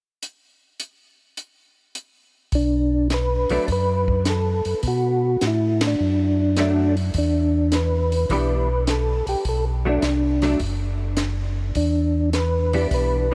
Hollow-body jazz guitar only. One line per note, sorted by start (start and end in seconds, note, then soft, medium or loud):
3.50 3.67 F#3 medium
3.50 3.67 A3 medium
3.50 3.67 D4 medium
6.58 6.93 F#3 medium
6.58 6.94 A3 medium
6.58 6.94 D4 medium
8.31 8.66 E3 medium
8.31 8.66 B3 medium
8.31 8.67 D4 medium
8.31 8.67 G4 medium
9.85 10.01 F#3 medium
9.85 10.02 A3 medium
9.85 10.02 D4 soft
10.42 10.59 F#3 medium
10.42 10.59 A3 medium
10.42 10.59 D4 medium
12.73 13.27 E3 medium
12.73 13.27 B3 medium
12.73 13.27 D4 medium
12.73 13.28 G4 medium